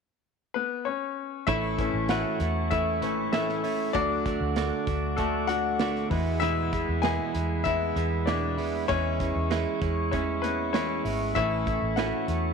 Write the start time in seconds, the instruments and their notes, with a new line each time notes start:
0.54 grand piano B3 B4
0.85 grand piano C#4 C#5
1.47 fingered electric bass A1, clean electric guitar A2 E3 A3 C#4 E4, grand piano E4 E5, tonewheel organ A4 E5 C#6, kick, closed hi-hat
1.78 grand piano E3 A3 C#4, clean electric guitar A3 C#4 E4, kick, closed hi-hat
1.93 fingered electric bass A1
2.09 clean electric guitar A2 E3 A3 C#4 E4, grand piano F#4 F#5, snare, closed hi-hat
2.40 fingered electric bass E2, clean electric guitar A3 C#4 E4, closed hi-hat
2.70 clean electric guitar E3 A3 C#4 E4, grand piano E4 E5, kick, closed hi-hat
3.02 fingered electric bass A1, grand piano E3 A3 C#4, clean electric guitar A3 C#4 E4, closed hi-hat
3.32 clean electric guitar A2 E3 A3 C#4 E4, grand piano E4 E5, snare, closed hi-hat
3.49 snare
3.64 clean electric guitar A3 C#4 E4, open hi-hat
3.93 fingered electric bass D2, clean electric guitar D3 A3 D4 F#4, grand piano F#3 A3 D4 D5, tonewheel organ F#5 D6, kick, closed hi-hat
4.26 clean electric guitar A3 D4 F#4, kick, closed hi-hat
4.41 fingered electric bass D2
4.56 clean electric guitar D3 A3 D4 F#4, snare, closed hi-hat
4.87 fingered electric bass D2, clean electric guitar A3 D4 F#4, kick, closed hi-hat
5.17 clean electric guitar D3 A3 D4 F#4, grand piano A3 A4, kick, closed hi-hat
5.47 clean electric guitar A3 D4 F#4, grand piano F#4 F#5, closed hi-hat
5.79 clean electric guitar D3 A3 D4 F#4, snare, closed hi-hat
5.96 snare
6.10 fingered electric bass E2, grand piano E3 G#3 B3, clean electric guitar E3 G#3 B3 E4, tonewheel organ G#4 E5 B5, kick, open hi-hat
6.40 clean electric guitar E2 B2 E3 G#3 B3 E4, grand piano E4 E5, closed hi-hat
6.73 clean electric guitar E3 G#3 B3 E4, kick, closed hi-hat
6.89 fingered electric bass E2
7.02 clean electric guitar E2 B2 E3 G#3 B3 E4, grand piano G#4 G#5, snare, closed hi-hat
7.34 fingered electric bass E2, clean electric guitar E3 G#3 B3 E4, closed hi-hat
7.64 clean electric guitar E3 G#3 B3 E4, grand piano E4 E5, kick, closed hi-hat
7.96 fingered electric bass E2, clean electric guitar E3 G#3 B3 E4, closed hi-hat
8.26 clean electric guitar E2 B2 E3 G#3 B3 E4, grand piano D4 D5, snare, closed hi-hat
8.58 clean electric guitar E3 G#3 B3 E4, open hi-hat
8.88 fingered electric bass E2, clean electric guitar E3 G#3 C#4 E4, grand piano E3 G#3 C#4 C#5, tonewheel organ G#4 E5 C#6, kick, closed hi-hat
9.19 clean electric guitar G#3 C#4 E4, kick, closed hi-hat
9.36 fingered electric bass E2
9.50 clean electric guitar E3 G#3 C#4 E4, snare, closed hi-hat
9.81 fingered electric bass E2, clean electric guitar G#3 C#4 E4, kick, closed hi-hat
10.11 clean electric guitar E3 G#3 C#4 E4, grand piano C#4 C#5, kick, closed hi-hat
10.42 clean electric guitar G#3 C#4 E4, grand piano B3 B4, closed hi-hat
10.73 clean electric guitar E3 G#3 C#4 E4, grand piano C#4 C#5, snare, closed hi-hat
11.05 fingered electric bass G#1, clean electric guitar G#3 C#4 E4, open hi-hat
11.35 fingered electric bass A1, clean electric guitar A2 E3 A3 C#4 E4, grand piano E3 A3 C#4 E4 E5, tonewheel organ A4, kick, closed hi-hat
11.67 clean electric guitar A3 C#4 E4, kick, closed hi-hat
11.82 fingered electric bass A1
11.96 clean electric guitar A2 E3 A3 C#4 E4, grand piano F#4 F#5, snare, closed hi-hat
12.28 fingered electric bass E2, clean electric guitar A3 C#4 E4, closed hi-hat